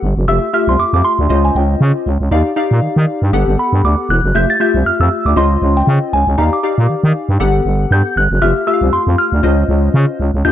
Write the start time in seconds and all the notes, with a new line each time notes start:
0.03 G1
0.17 F#1
0.27 F1 A3 F4 G4 E5 E6
0.53 A3 F4 G4 E5 F6
0.67 C2 C6
0.79 F2 D6
0.93 F2 D6
1.04 C6
1.19 D2
1.29 C#2 C#4 F4 C5 D#5
1.45 G#5
1.55 C#2 G5
1.81 C#3
2.06 C#2
2.20 C#2
2.31 D#2 D#4 G4 D5 F5
2.56 D#4 G4 D5 F5
2.71 A#2
2.82 D#3
2.96 D#3
3.22 G2
3.33 G1 B3 G4 A4 F#5
3.47 G1
3.59 B5
3.73 G2
3.84 D2 D6
4.09 E1 F#6
4.24 F#1
4.34 F1 A3 F4 G4 E5 G6
4.50 A6
4.60 A3 F4 G4 E5 G6
4.74 C2
4.86 F2 F6
5.00 F2 E6
5.25 D2 D6
5.36 C#2 C#4 F4 C5 D#5 C6
5.62 C#2
5.77 G5
5.87 C#3
6.13 C#2 G#5
6.27 C#2
6.38 D#2 D#4 G4 D5 F5 A#5
6.53 D6
6.63 D#4 G4 D5 F5
6.78 A#2
6.89 D#3
7.03 D#3
7.29 G2
7.40 G1 B3 G4 A4 F#5
7.65 G1
7.91 G2 G6
8.16 G1 F#6
8.31 F#1
8.41 F1 A3 F4 G4 E5 F6
8.67 A3 F4 G4 E5 E6
8.73 F5
8.81 C2
8.93 F2 C6
9.07 F2
9.18 F6
9.32 D2
9.43 C#2 C#4 F4 C5 D#5
9.68 C#2
9.94 C#3
10.20 C#2
10.34 C#2
10.45 D#2 D4 F4 G4 D#5 G6